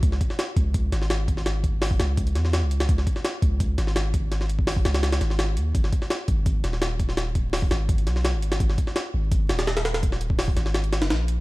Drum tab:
HH |x-x-x-x-x-x-x-x-|x-x-o-x-xxx-x-xx|x-x-x-x-x-x-x-x-|x-x-o-xxxxx-x-x-|
SD |-o-oo-----ooo--o|o---o-o---ooo--o|-o-oo-----ooo---|oo--o-ooooooo---|
BD |o-o---o-o-----o-|--o--o--o-------|o-o---o-o-----o-|---o-o----------|

HH |x-x-x-x-x-x-x-x-|x-x-o-x-xxx-x-xx|x-x-x---x-xxxxxx|x-x-o-x-xxxxx-x-|
SD |-o-oo-----ooo--o|o---o-o---ooo--o|-o-oo-----oooooo|-o--o-ooo-ooo---|
BD |o-o---o-o-----o-|--o--o--o-------|o-o-----o-------|o--o-o----------|